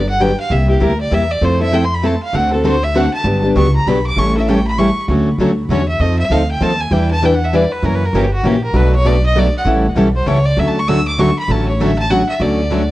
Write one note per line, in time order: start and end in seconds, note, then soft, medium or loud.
0.00 0.32 G1 loud
0.09 0.23 F#5 medium
0.20 0.30 D3 medium
0.20 0.30 F#3 medium
0.20 0.31 B3 loud
0.20 0.31 D4 medium
0.20 0.31 G4 loud
0.20 0.39 G5 medium
0.40 0.53 F5 medium
0.50 0.74 C2 medium
0.50 0.68 C3 medium
0.50 0.68 G3 medium
0.50 0.68 A#3 medium
0.50 0.68 E4 medium
0.50 0.67 G4 medium
0.50 0.69 E5 medium
0.68 0.79 A#3 soft
0.68 0.80 E4 medium
0.68 0.80 G4 medium
0.68 0.85 G4 soft
0.80 1.07 D2 medium
0.80 0.91 C3 medium
0.80 0.91 G3 medium
0.80 0.91 A#3 medium
0.80 0.92 E4 medium
0.80 0.92 G4 medium
0.80 1.00 A#4 medium
1.01 1.16 D5 medium
1.11 1.37 E2 medium
1.11 1.22 C3 medium
1.11 1.22 G3 medium
1.11 1.22 A#3 loud
1.11 1.22 E4 loud
1.11 1.22 G4 loud
1.11 1.33 E5 medium
1.31 1.46 D5 medium
1.41 2.15 F2 medium
1.41 1.59 F3 medium
1.41 1.59 A3 medium
1.41 1.59 C4 medium
1.41 1.60 E4 medium
1.41 1.58 A4 medium
1.41 1.61 C5 medium
1.60 1.72 C4 soft
1.60 1.72 E4 soft
1.60 1.72 A4 medium
1.60 1.76 E5 loud
1.72 1.83 F3 medium
1.72 1.83 A3 medium
1.72 1.83 C4 medium
1.72 1.84 E4 loud
1.72 1.84 A4 loud
1.72 1.86 G5 medium
1.85 1.96 C6 medium
1.95 2.08 B5 medium
2.02 2.13 F3 medium
2.02 2.14 A3 medium
2.02 2.14 C4 medium
2.02 2.14 E4 loud
2.02 2.14 A4 loud
2.02 2.22 A5 medium
2.23 2.37 F5 medium
2.33 3.06 D2 medium
2.33 2.51 D3 medium
2.33 2.51 A3 medium
2.33 2.51 C4 medium
2.33 2.51 F#4 medium
2.33 2.50 A4 medium
2.33 2.52 F#5 medium
2.51 2.63 C4 soft
2.51 2.64 F#4 soft
2.51 2.63 A4 medium
2.51 2.67 A4 soft
2.63 2.74 D3 medium
2.63 2.75 A3 medium
2.63 2.75 C4 medium
2.63 2.75 F#4 medium
2.63 2.75 A4 loud
2.63 2.85 C5 medium
2.84 2.98 E5 medium
2.94 3.05 D3 medium
2.94 3.05 A3 medium
2.94 3.05 C4 medium
2.94 3.06 F#4 loud
2.94 3.06 A4 loud
2.94 3.13 F#5 medium
3.14 3.42 A5 loud
3.24 3.49 G1 loud
3.24 3.42 D3 medium
3.24 3.43 F#3 medium
3.24 3.43 B3 medium
3.24 3.43 D4 medium
3.24 3.42 G4 medium
3.43 3.55 B3 soft
3.43 3.55 D4 medium
3.43 3.55 G4 medium
3.56 3.81 C#2 loud
3.56 3.66 D3 medium
3.56 3.66 F#3 medium
3.56 3.67 B3 loud
3.56 3.67 D4 medium
3.56 3.67 G4 medium
3.56 3.73 C#6 medium
3.76 3.89 A#5 medium
3.86 4.12 B1 medium
3.86 3.97 D3 medium
3.86 3.98 F#3 medium
3.86 3.98 B3 medium
3.86 3.98 D4 loud
3.86 3.98 G4 loud
3.86 4.05 B5 medium
4.07 4.20 D6 loud
4.16 4.90 A1 medium
4.16 4.34 E3 medium
4.16 4.35 G3 medium
4.16 4.35 C#4 medium
4.16 4.35 E4 medium
4.16 4.35 A4 medium
4.16 4.36 C#6 medium
4.36 4.48 C#4 soft
4.36 4.48 E4 medium
4.36 4.47 A4 medium
4.36 4.51 E5 medium
4.49 4.59 E3 medium
4.49 4.59 G3 medium
4.49 4.59 C#4 loud
4.49 4.59 E4 loud
4.49 4.59 A4 medium
4.49 4.66 G5 medium
4.67 4.80 B5 loud
4.79 4.89 E3 medium
4.79 4.89 G3 loud
4.79 4.89 C#4 loud
4.79 4.89 E4 loud
4.79 4.90 A4 loud
4.79 5.03 C#6 medium
5.08 5.33 D2 loud
5.08 5.28 D3 medium
5.08 5.28 F#3 medium
5.08 5.28 A3 medium
5.08 5.29 C#4 medium
5.08 5.29 F#4 medium
5.08 5.29 A4 medium
5.38 5.64 D2 medium
5.38 5.50 D3 medium
5.38 5.50 F#3 medium
5.38 5.50 A3 medium
5.38 5.50 C#4 medium
5.38 5.51 F#4 medium
5.38 5.51 A4 medium
5.69 5.95 E2 medium
5.69 5.80 D3 medium
5.69 5.80 F#3 medium
5.69 5.81 A3 loud
5.69 5.81 C#4 medium
5.69 5.81 F#4 medium
5.69 5.81 A4 medium
5.69 5.88 C#5 medium
5.88 6.02 E5 loud
6.00 6.24 F2 loud
6.00 6.20 F3 medium
6.00 6.20 C4 medium
6.00 6.20 D#4 medium
6.00 6.20 A4 medium
6.00 6.18 D#5 medium
6.19 6.33 E5 medium
6.30 6.56 D2 medium
6.30 6.41 F3 medium
6.30 6.41 C4 medium
6.30 6.42 D#4 medium
6.30 6.42 A4 loud
6.30 6.49 F5 medium
6.51 6.64 G5 medium
6.60 6.87 D#2 medium
6.60 6.71 F3 medium
6.60 6.72 C4 loud
6.60 6.72 D#4 loud
6.60 6.72 A4 loud
6.60 6.82 A5 loud
6.81 6.94 G#5 medium
6.91 7.64 E2 loud
6.91 7.11 E3 medium
6.91 7.11 G3 medium
6.91 7.11 D4 medium
6.91 7.11 E4 medium
6.91 7.12 B4 medium
6.91 7.10 G5 medium
7.11 7.26 A5 loud
7.22 7.33 E3 medium
7.22 7.33 G3 medium
7.22 7.33 D4 loud
7.22 7.33 E4 loud
7.22 7.33 B4 loud
7.22 7.36 G5 medium
7.35 7.46 F#5 medium
7.45 7.57 E5 medium
7.53 7.63 E3 medium
7.53 7.63 G3 medium
7.53 7.64 D4 medium
7.53 7.64 E4 loud
7.53 7.64 B4 loud
7.53 7.73 D5 medium
7.72 7.87 B4 medium
7.83 8.07 F#2 loud
7.83 8.03 C#3 medium
7.83 8.03 E3 medium
7.83 8.03 F#3 medium
7.83 8.03 A#3 medium
7.83 8.03 C#4 medium
7.83 8.03 E4 medium
7.83 8.03 F#4 medium
7.83 8.03 A#4 medium
7.83 7.96 A#4 medium
7.95 8.07 B4 medium
8.05 8.17 A#4 medium
8.13 8.39 G1 medium
8.13 8.25 C#3 medium
8.13 8.25 E3 medium
8.13 8.24 F#3 medium
8.13 8.25 A#3 medium
8.13 8.25 C#4 loud
8.13 8.25 E4 medium
8.13 8.25 F#4 medium
8.13 8.33 G4 medium
8.13 8.25 A#4 loud
8.33 8.48 F#4 medium
8.43 8.69 A#1 medium
8.43 8.54 C#3 medium
8.43 8.55 E3 medium
8.43 8.55 F#3 medium
8.43 8.55 A#3 loud
8.43 8.55 C#4 medium
8.43 8.55 E4 medium
8.43 8.55 F#4 loud
8.43 8.63 G4 medium
8.43 8.56 A#4 medium
8.64 8.78 A#4 medium
8.74 9.47 B1 loud
8.74 8.94 B2 medium
8.74 8.94 F#3 medium
8.74 8.94 A3 medium
8.74 8.94 D4 medium
8.74 8.94 F#4 medium
8.74 8.95 B4 medium
8.74 8.94 B4 medium
8.95 9.08 C#5 medium
9.05 9.15 B2 medium
9.05 9.16 F#3 medium
9.05 9.16 A3 medium
9.05 9.16 D4 loud
9.05 9.16 F#4 loud
9.05 9.16 B4 loud
9.05 9.24 D5 medium
9.26 9.40 D#5 loud
9.35 9.46 B2 medium
9.35 9.46 F#3 loud
9.35 9.46 A3 loud
9.35 9.47 D4 loud
9.35 9.47 F#4 loud
9.35 9.46 B4 medium
9.35 9.55 D5 medium
9.57 9.64 F#5 medium
9.65 9.90 A1 medium
9.65 9.85 E3 medium
9.65 9.85 G3 medium
9.65 9.86 C#4 medium
9.65 9.86 E4 medium
9.65 9.86 A4 medium
9.95 10.22 B1 medium
9.95 10.07 E3 loud
9.95 10.07 G3 medium
9.95 10.07 C#4 medium
9.95 10.07 E4 medium
9.95 10.08 A4 loud
10.16 10.29 C5 medium
10.26 10.52 C#2 medium
10.26 10.37 E3 loud
10.26 10.37 G3 medium
10.26 10.38 C#4 medium
10.26 10.38 E4 loud
10.26 10.38 A4 loud
10.26 10.47 C#5 medium
10.46 10.60 D5 medium
10.57 11.30 D2 loud
10.57 10.77 D3 medium
10.57 10.77 F#3 medium
10.57 10.77 A3 medium
10.57 10.77 C#4 medium
10.57 10.77 F#4 medium
10.57 10.77 A4 medium
10.57 10.70 E5 medium
10.68 10.81 A5 medium
10.79 10.90 C#6 medium
10.88 10.99 D3 medium
10.88 10.99 F#3 loud
10.88 10.99 A3 medium
10.88 10.99 C#4 loud
10.88 10.99 F#4 medium
10.88 10.99 A4 loud
10.88 11.06 E6 loud
11.08 11.21 D6 medium
11.18 11.29 D3 loud
11.18 11.29 F#3 medium
11.18 11.30 A3 loud
11.18 11.30 C#4 loud
11.18 11.30 F#4 loud
11.18 11.30 A4 loud
11.18 11.37 C#6 medium
11.39 11.53 B5 medium
11.48 12.22 A1 loud
11.48 11.69 D3 medium
11.48 11.69 F#3 medium
11.48 11.69 A3 medium
11.48 11.69 C#4 medium
11.48 11.69 F#4 medium
11.48 11.69 A4 medium
11.48 11.68 A5 medium
11.69 11.83 C#5 medium
11.80 11.90 D3 medium
11.80 11.91 F#3 loud
11.80 11.91 A3 loud
11.80 11.91 C#4 loud
11.80 11.91 F#4 loud
11.80 11.91 A4 loud
11.80 11.98 E5 medium
11.99 12.12 A5 loud
12.10 12.21 D3 loud
12.10 12.21 F#3 medium
12.10 12.21 A3 medium
12.10 12.21 C#4 loud
12.10 12.21 F#4 loud
12.10 12.21 A4 loud
12.10 12.28 F#5 loud
12.29 12.43 E5 medium
12.40 12.91 D2 loud
12.40 12.60 D3 medium
12.40 12.60 F#3 medium
12.40 12.60 A3 medium
12.40 12.61 C#4 medium
12.40 12.61 F#4 medium
12.40 12.60 A4 medium
12.40 12.90 D5 medium
12.70 12.81 D3 medium
12.70 12.82 F#3 medium
12.70 12.82 A3 medium
12.70 12.82 C#4 medium
12.70 12.82 F#4 medium
12.70 12.82 A4 medium